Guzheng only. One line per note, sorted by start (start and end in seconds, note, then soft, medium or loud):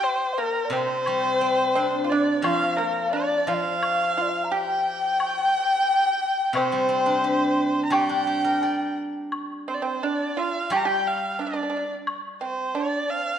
0.70 2.42 C3 medium
1.07 2.44 G3 soft
1.41 2.78 C4 soft
1.76 3.13 D4 soft
2.42 3.46 F3 medium
3.47 5.54 F3 soft
6.53 8.60 C3 medium
6.72 7.89 G3 soft
6.89 8.26 C4 soft
7.06 8.08 D4 soft
7.24 8.26 G4 soft
7.90 10.01 G3 medium
8.09 9.50 D4 soft
8.27 9.67 G4 soft
8.44 9.85 A#4 soft
8.63 10.02 D5 soft
10.70 12.75 G3 medium